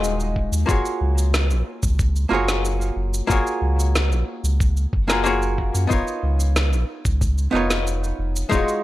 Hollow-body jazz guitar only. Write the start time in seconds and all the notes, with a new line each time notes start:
Already playing: G#3 D#4 F4 F#4 D#5
0.66 A#3 F4 F#4
0.70 G#4 C#5
2.29 A#3 F4 F#4
2.33 G#4 C#5
3.27 A#3 F4 F#4 G#4
3.32 C#5
5.08 A#3 F4 F#4 G#4 A#4
5.24 A#3 F4 F#4 G#4 C#5
5.87 B3 D#4 F4
5.92 A#4 C#5
7.51 B3 D#4 F4
7.55 A#4 C#5
8.49 G#3 D#4 F4
8.54 F#4 C#5